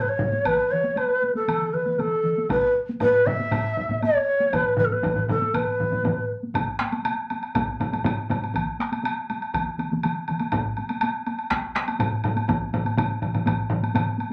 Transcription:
0.01 B4
0.08 C#5
0.19 taiko low-mid
0.32 taiko high
0.45 B4, taiko, taiko mid, taiko high, high woodblock
0.71 C#5, taiko mid
0.83 taiko high
0.96 B4, taiko high, high woodblock
1.22 taiko high
1.35 A4, taiko high
1.48 taiko mid, taiko high, high woodblock
1.60 taiko mid
1.73 B4, taiko mid
1.86 taiko mid, taiko high
1.92 B4
1.99 A4, taiko mid, taiko high, high woodblock
2.23 taiko mid
2.37 taiko high
2.49 B4, taiko, taiko low-mid, taiko high, high woodblock
2.89 taiko high
3.00 B4, taiko low-mid, taiko high, high woodblock
3.26 E5, taiko low-mid, taiko high
3.39 taiko high
3.51 taiko low-mid, taiko high, high woodblock
3.77 taiko low-mid
3.89 taiko low-mid, taiko high
4.02 C#5, taiko high, high woodblock
4.41 taiko high
4.52 B4, taiko, taiko low-mid, taiko mid, taiko high, high woodblock
4.77 B4, taiko low-mid, taiko mid
4.85 A4
4.91 B4, taiko high
5.03 taiko, taiko low-mid, taiko mid, taiko high, high woodblock
5.16 taiko low-mid, taiko mid
5.28 A4, taiko low-mid, taiko mid, taiko high, high woodblock
5.42 taiko high
5.54 B4, taiko low-mid, taiko mid, taiko high, high woodblock
5.79 taiko low-mid, taiko mid
5.91 taiko low-mid, taiko mid, taiko high
6.04 taiko low-mid, taiko mid, taiko high, high woodblock
6.43 taiko high
6.54 taiko, taiko low-mid, taiko high, high woodblock
6.79 taiko rim, taiko high, high woodblock
6.92 taiko high, high woodblock
7.05 taiko high, high woodblock
7.30 taiko high, high woodblock
7.43 high woodblock
7.55 taiko, taiko low-mid, taiko high, high woodblock
7.80 taiko low-mid, taiko high, high woodblock
7.92 taiko low-mid, taiko high, high woodblock
8.05 taiko low-mid, taiko high, high woodblock
8.30 taiko low-mid, taiko high, high woodblock
8.42 taiko high, high woodblock
8.54 taiko, taiko mid, taiko high, high woodblock
8.79 taiko rim, taiko high, high woodblock
8.92 taiko high, high woodblock
9.04 taiko high, high woodblock
9.30 taiko high, high woodblock
9.42 high woodblock
9.54 taiko, taiko mid, taiko high, high woodblock
9.78 taiko mid, taiko high, high woodblock
9.91 taiko mid, taiko high
10.03 taiko mid, taiko high, high woodblock
10.28 taiko mid, taiko high, high woodblock
10.40 taiko high, high woodblock
10.52 taiko, taiko low-mid, taiko high, high woodblock
10.77 taiko high, high woodblock
10.89 taiko high, high woodblock
11.01 taiko high, high woodblock
11.26 taiko high, high woodblock
11.39 high woodblock
11.50 taiko rim, taiko, taiko high, high woodblock
11.75 taiko rim, taiko high, high woodblock
11.88 taiko high, high woodblock
11.99 taiko low-mid, taiko high, high woodblock
12.24 taiko low-mid, taiko high, high woodblock
12.36 taiko high, high woodblock
12.48 taiko, taiko low-mid, taiko mid, taiko high, high woodblock
12.73 taiko low-mid, taiko mid, taiko high, high woodblock
12.85 taiko high, high woodblock
12.97 taiko low-mid, taiko mid, taiko high, high woodblock
13.22 taiko low-mid, taiko mid, high woodblock
13.34 taiko low-mid, taiko mid, taiko high, high woodblock
13.46 taiko, taiko low-mid, taiko mid, taiko high, high woodblock
13.70 taiko low-mid, taiko mid, high woodblock
13.83 taiko high, high woodblock
13.94 taiko low-mid, taiko mid, taiko high, high woodblock
14.18 taiko high, high woodblock

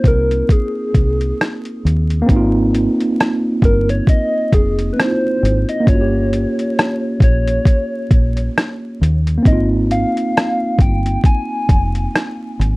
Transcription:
Already playing: A#3 C4 D#4 F4
0.04 C2 A#4, kick, closed hi-hat
0.31 closed hi-hat
0.49 G#4, kick, closed hi-hat
0.94 C2, kick, closed hi-hat
1.21 closed hi-hat
1.41 cross-stick, closed hi-hat
1.65 closed hi-hat
1.85 D#2, closed hi-hat
2.10 closed hi-hat
2.22 A#3
2.26 G#1 C4, kick, closed hi-hat
2.31 D#4
2.36 F4
2.75 closed hi-hat
3.01 closed hi-hat
3.20 cross-stick, closed hi-hat
3.62 G1 A#4, kick, closed hi-hat
3.89 C#5, closed hi-hat
4.07 D#5, kick, closed hi-hat
4.53 F1 G#4, kick, closed hi-hat
4.79 closed hi-hat
4.93 A#3 C4 B4
4.99 D#4 E4 C5, cross-stick, closed hi-hat
5.08 F4
5.43 G#1, closed hi-hat
5.69 D#5, closed hi-hat
5.80 A#3
5.85 G1 C#4, kick, closed hi-hat
5.89 F4 C#5
5.94 F#4
6.01 G4
6.33 closed hi-hat
6.59 closed hi-hat
6.79 cross-stick, closed hi-hat
7.20 A#1 C#5, kick, closed hi-hat
7.47 closed hi-hat
7.65 kick, closed hi-hat
8.11 A#1, kick, closed hi-hat
8.37 closed hi-hat
8.58 cross-stick, closed hi-hat
9.01 D#2, closed hi-hat
9.27 closed hi-hat
9.38 A#3
9.43 G#1 C4, kick, closed hi-hat
9.47 D#4 D#5
9.52 F4
9.91 F5, closed hi-hat
10.17 closed hi-hat
10.37 cross-stick, closed hi-hat
10.79 G1 G5, kick, closed hi-hat
11.06 closed hi-hat
11.24 G#5, kick, closed hi-hat
11.69 F1, kick, closed hi-hat
11.95 closed hi-hat
12.16 cross-stick, closed hi-hat
12.59 G#1, closed hi-hat

